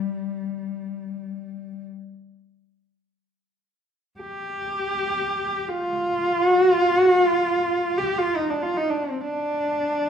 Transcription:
0.00 1.85 G3 medium
4.20 5.70 G4 medium
5.69 6.51 F4 loud
6.51 6.73 F#4 loud
6.73 6.97 F4 loud
6.97 7.19 F#4 loud
7.19 7.99 F4 loud
7.98 8.20 G4 medium
8.18 8.37 F4 medium
8.36 8.51 D#4 medium
8.50 8.64 D4 medium
8.63 8.78 F4 medium
8.77 8.91 D#4 medium
8.90 9.05 D4 medium
9.04 9.22 C4 medium
9.20 10.09 D4 medium

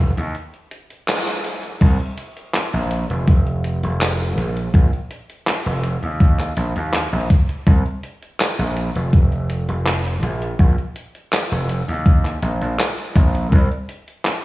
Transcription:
0.00 0.11 F1 loud
0.17 0.35 D#2 medium
0.17 closed hi-hat medium
0.35 closed hi-hat medium
0.54 closed hi-hat soft
0.71 closed hi-hat medium
0.90 closed hi-hat medium
1.08 clap loud
1.08 closed hi-hat medium
1.27 closed hi-hat soft
1.45 closed hi-hat medium
1.63 closed hi-hat medium
1.81 1.97 C2 loud
1.81 kick loud
1.81 closed hi-hat medium
1.81 crash loud
2.00 closed hi-hat soft
2.18 closed hi-hat loud
2.37 closed hi-hat medium
2.54 clap loud
2.54 closed hi-hat medium
2.73 3.04 A#1 loud
2.73 closed hi-hat soft
2.91 closed hi-hat loud
3.10 3.78 F1 medium
3.10 closed hi-hat medium
3.28 kick loud
3.28 closed hi-hat medium
3.47 closed hi-hat soft
3.64 closed hi-hat loud
3.83 4.37 F1 loud
3.83 closed hi-hat medium
4.01 clap loud
4.01 closed hi-hat medium
4.20 closed hi-hat soft
4.37 4.68 A#1 loud
4.37 closed hi-hat loud
4.57 closed hi-hat medium
4.74 4.90 A#1 loud
4.74 kick loud
4.74 closed hi-hat medium
4.93 closed hi-hat soft
5.11 closed hi-hat loud
5.30 closed hi-hat medium
5.47 clap loud
5.47 closed hi-hat medium
5.66 5.96 F1 loud
5.66 closed hi-hat soft
5.84 closed hi-hat loud
6.03 6.52 D#2 medium
6.03 closed hi-hat medium
6.20 kick loud
6.20 closed hi-hat medium
6.39 clap soft
6.39 closed hi-hat soft
6.57 6.73 A#1 medium
6.57 closed hi-hat loud
6.76 7.06 D#2 loud
6.76 closed hi-hat medium
6.94 clap loud
6.94 closed hi-hat medium
7.13 7.27 A#1 loud
7.13 closed hi-hat soft
7.30 kick loud
7.30 closed hi-hat loud
7.49 closed hi-hat medium
7.67 7.83 C2 loud
7.67 kick loud
7.67 closed hi-hat medium
7.86 closed hi-hat soft
8.03 closed hi-hat medium
8.22 closed hi-hat medium
8.40 clap loud
8.40 closed hi-hat medium
8.59 8.89 A#1 loud
8.59 closed hi-hat soft
8.77 closed hi-hat loud
8.95 9.64 F1 medium
8.95 closed hi-hat medium
9.13 kick loud
9.13 closed hi-hat medium
9.32 closed hi-hat soft
9.50 closed hi-hat loud
9.69 10.23 F1 loud
9.69 closed hi-hat medium
9.86 clap loud
9.86 closed hi-hat medium
10.05 closed hi-hat soft
10.23 10.54 A#1 loud
10.23 closed hi-hat medium
10.42 closed hi-hat medium
10.59 10.75 A#1 loud
10.59 kick loud
10.59 closed hi-hat medium
10.78 closed hi-hat soft
10.96 closed hi-hat medium
11.15 closed hi-hat medium
11.33 clap loud
11.33 closed hi-hat medium
11.51 11.82 F1 loud
11.51 closed hi-hat soft
11.69 closed hi-hat medium
11.88 12.38 D#2 medium
11.88 closed hi-hat medium
12.06 kick loud
12.06 closed hi-hat medium
12.25 clap soft
12.25 closed hi-hat soft
12.42 12.58 A#1 loud
12.42 closed hi-hat medium
12.61 12.76 A#1 medium
12.61 closed hi-hat medium
12.79 clap loud
12.79 closed hi-hat medium
12.98 closed hi-hat soft
13.15 13.46 A#1 medium
13.15 kick loud
13.15 closed hi-hat medium
13.35 closed hi-hat medium
13.52 13.68 C2 loud
13.52 kick loud
13.52 closed hi-hat soft
13.71 closed hi-hat soft
13.89 closed hi-hat medium
14.08 closed hi-hat medium
14.25 clap loud
14.25 closed hi-hat soft

